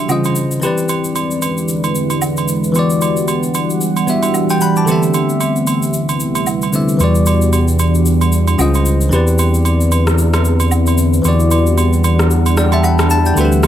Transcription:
Already playing: tine electric piano E3 D4 F#4 G4 E5
0.08 tine electric piano C#3 C#4 F4 C5 D#5, ambient pad G#3, low woodblock, shaker
0.24 high agogo, shaker
0.36 shaker
0.51 shaker
0.60 ambient pad E2 D3 E4 B4, tine electric piano E3 C4 G4, high agogo, shaker
0.65 tine electric piano B4 D5
0.78 shaker
0.89 high agogo, shaker
1.04 shaker
1.16 high agogo, shaker
1.31 shaker
1.42 high agogo, shaker
1.58 shaker
1.68 shaker
1.84 high agogo, shaker
1.95 shaker
2.10 high agogo, shaker
2.22 low woodblock, shaker
2.37 high agogo, shaker
2.48 shaker
2.64 shaker
2.72 tine electric piano E3 B3 F#4, ambient pad E3 G3 D4 F#5, high agogo, shaker
2.77 tine electric piano G4 D5
2.90 shaker
3.01 high agogo, shaker
3.17 shaker
3.28 high agogo, shaker
3.43 shaker
3.54 high agogo, shaker
3.70 shaker
3.81 shaker
3.97 high agogo, shaker
4.06 tine electric piano E3 B3 F#4 G4 E5, shaker
4.23 high agogo, shaker
4.34 low woodblock, shaker
4.50 tine electric piano D5 G5, high agogo, shaker
4.61 tine electric piano F#5 B5, shaker
4.76 tine electric piano A5 D6, shaker
4.85 ambient pad D2 C3 G3 E4 B4, tine electric piano D3 A3 B3 C4, high agogo, shaker
4.90 tine electric piano G4 E5
5.03 shaker
5.14 high agogo, shaker
5.29 shaker
5.41 high agogo, shaker
5.56 shaker
5.67 high agogo, shaker
5.83 shaker
5.94 shaker
6.09 high agogo, shaker
6.20 shaker
6.35 high agogo, shaker
6.47 low woodblock, shaker
6.62 high agogo, shaker
6.72 tine electric piano D3 A3 B3 C4 G4 E5, shaker
6.89 shaker
6.97 sub bass E2, tine electric piano E3 B3 F#4, ambient pad E3 D4 F#5, high agogo, shaker
7.02 tine electric piano G4 D5
7.15 shaker
7.26 high agogo, shaker
7.42 shaker
7.53 high agogo, shaker
7.68 shaker
7.79 high agogo, shaker
7.95 shaker
8.06 shaker
8.21 high agogo, shaker
8.33 shaker
8.48 high agogo, shaker
8.58 sub bass C#2, tine electric piano C#3 C#4 F4 C5 D#5, low woodblock, shaker
8.74 high agogo, shaker
8.86 shaker
9.01 shaker
9.09 sub bass E2, ambient pad D3 C4 E4 B4, tine electric piano E3 C4 G4, high agogo, shaker
9.14 tine electric piano B4 D5
9.27 shaker
9.39 high agogo, shaker
9.54 shaker
9.65 high agogo, shaker
9.81 shaker
9.92 high agogo, shaker
10.07 cross-stick, shaker
10.18 shaker
10.34 cross-stick, high agogo, shaker
10.45 shaker
10.60 high agogo, shaker
10.71 low woodblock, shaker
10.87 high agogo, shaker
10.98 shaker
11.13 shaker
11.22 sub bass E2, tine electric piano E3 B3 F#4, ambient pad E3 G3 D4 F#5, high agogo, shaker
11.27 tine electric piano G4 D5
11.40 shaker
11.51 high agogo, shaker
11.67 shaker
11.78 high agogo, shaker
11.93 shaker
12.04 high agogo, shaker
12.19 cross-stick, shaker
12.31 shaker
12.46 high agogo, shaker
12.57 tine electric piano D5 G5, cross-stick, shaker
12.72 tine electric piano E5 A5, high agogo, shaker
12.83 tine electric piano F#5 B5, low woodblock, shaker
12.99 cross-stick, high agogo, shaker
13.10 tine electric piano E5 A5, shaker
13.26 tine electric piano D5 G5, shaker
13.34 sub bass D2, ambient pad C3 E4 B4, tine electric piano D3 A3 C4, high agogo, shaker
13.38 tine electric piano F#4 B4 E5
13.44 tine electric piano G4
13.52 shaker
13.63 cross-stick, high agogo, shaker

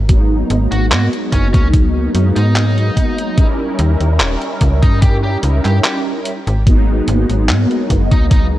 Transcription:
Already playing: fm bass G#1
0.08 analog polysynth F#3 G#3 A#3 B3 D#4, kick, closed hi-hat
0.50 fm bass G#1, closed hi-hat
0.71 fm bass G#1, lead electric guitar F#4, closed hi-hat
0.91 fm bass G#2, lead electric guitar F#4, clap, closed hi-hat
1.13 closed hi-hat
1.32 fm bass F#1, lead electric guitar C#4, kick, closed hi-hat
1.53 fm bass C#2, lead electric guitar C#4, kick, closed hi-hat
1.73 kick, closed hi-hat
2.13 fm bass F#2, analog polysynth F#3 G#3 A#3 B3 D#4, closed hi-hat
2.36 fm bass G#2, lead electric guitar D#4, closed hi-hat
2.56 clap, closed hi-hat
2.78 closed hi-hat
2.97 kick, closed hi-hat
3.18 closed hi-hat
3.37 analog polysynth G3 C#4 D#4 E4 A#4, kick, closed hi-hat
3.79 fm bass D#2, closed hi-hat
4.00 fm bass D#2, closed hi-hat
4.19 fm bass D#1, clap, closed hi-hat
4.42 closed hi-hat
4.61 fm bass C#2, kick, closed hi-hat
4.83 fm bass G2, lead electric guitar D#4, kick, closed hi-hat
5.01 lead electric guitar G4, kick, closed hi-hat
5.23 lead electric guitar G4
5.43 fm bass C#2, analog polysynth G3 C#4 D#4 E4 A#4, closed hi-hat
5.65 fm bass G2, lead electric guitar G4, clap, closed hi-hat
5.84 lead electric guitar G4, clap, closed hi-hat
6.25 closed hi-hat
6.47 fm bass G#1, closed hi-hat
6.65 analog polysynth F#3 G#3 A#3 B3 D#4, kick, closed hi-hat
7.08 fm bass G#1, closed hi-hat
7.29 fm bass G#1, closed hi-hat
7.49 fm bass G#2, clap, closed hi-hat
7.71 closed hi-hat
7.90 fm bass F#1, kick, closed hi-hat
8.12 fm bass C#2, lead electric guitar D#4, kick, closed hi-hat
8.31 lead electric guitar D#4, kick, closed hi-hat

